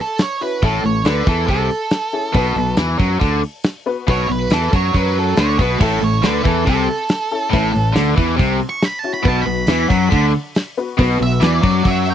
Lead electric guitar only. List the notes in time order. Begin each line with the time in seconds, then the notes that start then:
0.01 A4
0.22 C#5
0.42 B4
0.64 A4
0.86 C#5
1.07 B4
1.29 A4
1.50 A4
4.10 C#5
4.31 B4
4.54 A4
4.76 C#5
4.96 B4
5.19 A4
5.39 C#5
5.61 B4
5.82 A4
6.04 C#5
6.26 B4
6.47 A4
6.69 A4
8.69 C#6
8.85 B5
8.99 A5
9.14 B5
9.28 A5
9.42 B5
11.23 E5
11.44 D5
11.88 E5
12.10 G5